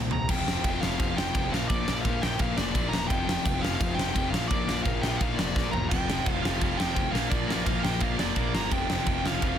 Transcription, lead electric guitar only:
0.13 0.30 A#5 loud
0.30 0.84 G5 loud
0.81 0.98 F5 medium
1.00 1.17 F5 loud
1.17 1.53 G5 medium
1.51 1.68 F5 medium
1.68 2.01 D5 loud
2.02 2.22 F5 loud
2.22 2.40 G5 loud
2.41 2.57 F5 loud
2.57 2.92 D5 loud
2.89 3.07 A#5 loud
3.08 3.63 G5 loud
3.61 3.74 F5 loud
3.76 3.96 F5 loud
3.95 4.29 G5 loud
4.30 4.47 F5 loud
4.48 4.83 D5 loud
4.83 5.03 F5 loud
5.01 5.21 G5 loud
5.17 5.35 F5 loud
5.35 5.72 D5 medium
5.71 5.88 A#5 loud
5.89 6.33 G5 loud
6.33 6.42 F5 loud
6.42 6.59 F5 medium
6.61 6.79 F5 loud
6.77 7.11 G5 medium
7.11 7.30 F5 medium
7.30 7.65 D5 loud
7.66 7.85 F5 medium
7.83 8.02 G5 medium
8.02 8.20 F5 loud
8.20 8.56 D5 loud
8.55 8.72 A#5 loud
8.72 9.27 G5 loud
9.26 9.59 F5 loud

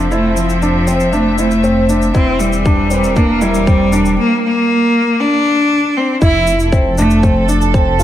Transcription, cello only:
0.00 0.11 F3 medium
0.11 0.38 A3 loud
0.36 1.14 F3 medium
1.13 1.38 A3 medium
1.38 2.11 A3 loud
2.14 2.41 C4 loud
2.40 3.17 G3 loud
3.16 3.43 A#3 loud
3.42 4.18 G3 loud
4.19 4.42 A#3 loud
4.44 5.22 A#3 loud
5.20 5.98 D4 loud
5.97 6.21 C4 loud
6.22 6.69 E4 loud
6.98 7.45 A3 loud

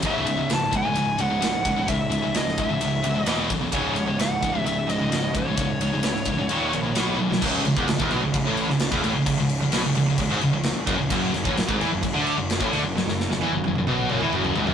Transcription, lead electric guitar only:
0.06 0.53 E5 loud
0.53 0.76 A5 loud
0.77 1.21 G#5 loud
1.22 1.92 F#5 loud
1.89 2.36 E5 medium
2.37 2.60 D#5 medium
2.60 3.19 E5 medium
3.19 3.48 D#5 medium
3.75 4.17 C#5 loud
4.21 4.68 F#5 loud
4.65 4.87 E5 medium
4.90 5.37 D#5 loud
5.38 7.17 C#5 medium

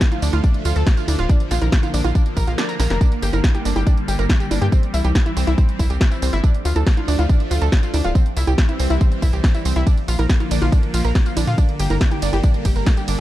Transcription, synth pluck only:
0.12 0.18 F4 medium
0.22 0.28 D4 medium
0.33 0.37 F4 loud
0.44 0.53 D4 medium
0.65 0.69 F4 loud
0.76 0.82 A4 medium
0.97 1.04 F4 medium
1.08 1.14 D4 medium
1.19 1.23 F4 loud
1.30 1.39 D4 medium
1.51 1.55 F4 loud
1.62 1.68 A#4 medium
1.83 1.89 F4 medium
1.94 2.00 D4 medium
2.04 2.08 F4 loud
2.15 2.24 D4 medium
2.37 2.46 A#4 loud
2.47 2.51 F4 loud
2.58 2.62 D4 loud
2.69 2.72 A#5 medium
2.80 2.86 A#4 medium
2.90 2.96 A#4 medium
3.01 3.10 D4 medium
3.22 3.26 G4 loud
3.33 3.39 A#4 medium
3.55 3.61 G4 medium
3.65 3.71 D4 medium
3.76 3.80 G4 loud
3.87 3.96 D4 medium
4.08 4.12 G4 loud
4.19 4.25 A#4 medium
4.40 4.46 G4 medium
4.51 4.57 D4 medium
4.62 4.65 G4 loud
4.72 4.82 C4 medium
4.94 4.97 E4 loud
5.04 5.11 G4 medium
5.26 5.32 E4 medium
5.37 5.43 C4 medium
5.47 5.51 E4 loud
5.58 5.67 C4 medium
5.79 5.83 E4 loud
5.90 5.96 G4 medium
6.12 6.18 E4 medium
6.22 6.29 C4 medium
6.33 6.37 E4 loud
6.44 6.53 D4 medium
6.65 6.69 F4 loud
6.76 6.82 A4 medium
6.97 7.03 F4 medium
7.08 7.14 D4 medium
7.19 7.22 F4 loud
7.29 7.39 D4 medium
7.51 7.55 F4 loud
7.62 7.68 A4 medium
7.83 7.89 F4 medium
7.94 8.00 D4 medium
8.04 8.08 F4 loud
8.15 8.25 C4 medium
8.37 8.40 E4 loud
8.47 8.54 G4 medium
8.69 8.75 E4 medium
8.79 8.86 C4 medium
8.90 8.94 E4 loud
9.01 9.10 C4 medium
9.22 9.26 E4 loud
9.33 9.39 G4 medium
9.55 9.61 E4 medium
9.65 9.71 C4 medium
9.76 9.80 E4 loud
9.87 9.96 D4 medium
10.08 10.12 F4 loud
10.19 10.25 A#4 medium
10.40 10.46 F4 medium
10.51 10.57 D4 medium
10.62 10.65 F4 loud
10.72 10.82 D4 medium
10.94 10.98 F4 loud
11.05 11.11 A#4 medium
11.26 11.32 F4 medium
11.37 11.43 D4 medium
11.47 11.51 F4 loud
11.58 11.67 D4 medium
11.80 11.83 G4 loud
11.90 11.96 A#4 medium
12.12 12.18 G4 medium
12.22 12.29 D4 medium
12.33 12.37 G4 loud
12.44 12.53 D4 medium
12.65 12.69 G4 loud
12.76 12.82 A#4 medium
12.97 13.03 G4 medium
13.08 13.14 D4 medium

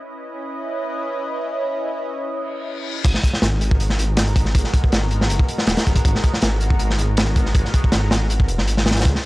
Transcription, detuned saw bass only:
3.05 3.14 G#1 loud
3.42 3.97 G#1 medium
3.99 4.54 G#1 loud
4.55 4.64 G#1 loud
4.92 5.29 G#1 medium
5.30 5.39 F#1 medium
5.67 5.76 D#1 loud
5.87 5.95 D#1 medium
6.05 6.14 G#1 loud
6.42 6.97 G#1 medium
6.99 7.54 G#1 loud
7.55 7.64 G#1 loud
7.92 8.50 G#1 medium
8.49 8.60 D#1 medium
8.59 9.04 G#1 medium
9.05 9.14 C#2 loud

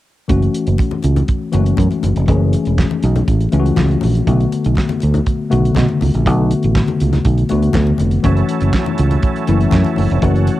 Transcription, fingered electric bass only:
0.30 0.47 F#1 medium
0.67 0.76 F#1 medium
1.04 1.21 C#2 medium
1.54 1.71 F#1 medium
1.79 1.87 F#2 medium
2.04 2.12 F#1 medium
2.16 2.25 F1 medium
2.29 2.54 F#1 loud
2.67 2.83 E1 medium
3.04 3.20 B1 medium
3.28 3.45 A1 medium
3.53 3.70 C#2 medium
3.78 3.95 C#2 medium
4.04 4.20 A#1 medium
4.27 4.44 B1 loud
4.66 4.74 B1 medium
5.03 5.20 D2 medium
5.53 5.69 B1 medium
5.77 5.85 B2 medium
6.02 6.10 C#2 medium
6.15 6.27 A#1 medium
6.27 6.52 B1 loud
6.64 6.81 A1 medium
7.01 7.18 C#2 medium
7.26 7.43 B1 medium
7.51 7.68 D2 medium
7.75 7.92 D2 medium
8.00 8.17 F1 medium
8.25 8.41 F#1 loud
8.62 8.70 F#1 medium
8.99 9.16 C#2 medium
9.49 9.65 F#1 medium
9.73 9.82 F#2 medium
9.98 10.07 F#1 medium
10.11 10.19 F1 medium
10.23 10.48 F#1 loud

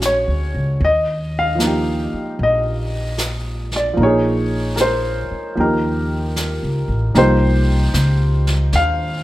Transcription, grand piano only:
0.00 0.80 G#3 soft
0.00 0.80 C#4 soft
0.00 0.81 D4 soft
0.00 0.81 F#4 soft
0.06 0.85 C#5 medium
0.85 1.38 D#5 medium
1.39 2.44 F5 medium
1.55 3.92 F3 soft
1.55 3.96 A#3 soft
1.63 3.99 D#4 soft
1.63 4.01 G4 soft
2.43 3.78 D#5 medium
3.76 4.00 D5 medium
3.94 5.54 F3 soft
3.94 5.55 A#3 soft
4.01 5.57 D#4 soft
4.01 5.59 G#4 medium
4.01 4.77 C#5 medium
4.76 4.78 A#4 soft
4.81 5.60 C5 medium
5.55 7.13 F3 soft
5.55 7.13 A#3 soft
5.55 7.14 D#4 soft
5.60 7.15 G4 soft
5.60 6.87 A#4 medium
7.14 8.36 F3 soft
7.14 8.36 A#3 soft
7.14 8.37 D#4 soft
7.14 8.37 G4 medium
7.14 8.70 C5 medium
8.76 9.23 F5 medium

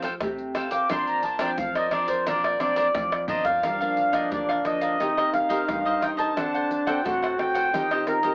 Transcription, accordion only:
0.71 0.88 D6 medium
0.90 1.06 C6 medium
1.08 1.24 A#5 medium
1.23 1.40 A5 medium
1.40 1.57 G5 medium
1.58 1.75 F5 medium
1.76 1.92 D#5 medium
1.92 2.09 D5 medium
2.09 2.25 C5 medium
2.28 2.58 D5 medium
2.60 3.25 D5 medium
3.29 3.45 D#5 loud
3.45 4.16 F5 loud
4.14 4.30 D#5 medium
4.33 4.48 D5 medium
4.66 5.30 D#5 medium
5.34 6.05 F5 medium
6.03 6.10 G5 medium
6.19 6.90 A5 medium
6.88 7.04 G5 medium
7.06 7.21 F#5 medium
7.39 8.04 G5 loud
8.08 8.35 A#4 medium

